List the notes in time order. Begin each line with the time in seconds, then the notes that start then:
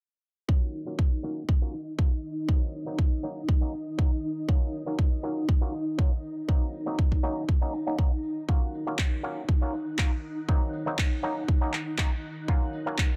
0.48 F#3 A#3 C#4 D#4 F4 D#5, kick
0.86 F#3 A#3 C#4 F4, tambourine
0.99 kick
1.23 F#3 A#3 C#4 F4
1.49 kick
1.62 F#3 A#3 C#4 F4
1.74 tambourine
1.87 tambourine
1.98 F#3 A#3 C#4 F4, kick
2.23 tambourine
2.37 tambourine
2.48 F#3 A#3 C4 D#4, kick
2.73 tambourine
2.86 F#3 A#3 C4 D#4
2.99 kick
3.23 F#3 A#3 C#4 D#4, tambourine
3.37 tambourine
3.49 kick
3.61 F#3 A#3 C#4 D#4
3.74 tambourine
3.86 tambourine
3.98 F#3 A#3 C#4 D#4, kick
4.23 tambourine
4.48 F#3 A#3 C#4 F4, kick
4.73 tambourine
4.86 F#3 A#3 C#4 F4, tambourine
4.99 kick
5.23 F#3 A#3 C#4 F4, tambourine
5.38 tambourine
5.49 kick
5.61 F#3 A#3 C#4 F4
5.73 tambourine
5.87 tambourine
5.98 F#3 A#3 C#4 F4, kick
6.23 tambourine
6.37 tambourine
6.48 F#3 A#3 C4 D#4, kick
6.73 tambourine
6.86 F#3 A#3 C4 D#4, tambourine
6.99 kick
7.12 kick
7.23 F#3 A#3 C#4 D#4, tambourine
7.36 tambourine
7.49 kick
7.61 F#3 A#3 C#4 D#4
7.73 tambourine
7.87 F#3 A#3 C#4 D#4, tambourine
7.98 F#3 A#3 C#4 D#4, kick
8.13 tambourine
8.23 tambourine
8.37 tambourine
8.48 F#3 A#3 C#4 D#4 F4 F#6, kick
8.74 tambourine
8.87 F#3 A#3 C#4 F4, tambourine
8.99 kick, clap
9.23 F#3 A#3 C#4 F4, tambourine
9.36 tambourine
9.49 kick
9.61 F#3 A#3 C#4 F4
9.74 tambourine
9.86 tambourine
9.98 F#3 A#3 C#4 F4, kick, clap
10.24 tambourine
10.37 tambourine
10.48 F#3 A#3 C4 D#4, kick
10.62 tambourine
10.73 tambourine
10.86 F#3 A#3 C4 D#4, tambourine
10.99 kick, clap
11.23 F#3 A#3 C#4 D#4, tambourine
11.37 tambourine
11.48 kick
11.61 F#3 A#3 C#4 D#4, tambourine
11.73 clap
11.86 tambourine
11.98 F#3 A#3 C#4 D#4, kick, clap
12.23 tambourine
12.36 tambourine
12.48 F#3 A#3 C#4 F4, kick
12.61 tambourine
12.73 tambourine
12.86 F#3 A#3 C#4 F4, tambourine
12.98 kick, clap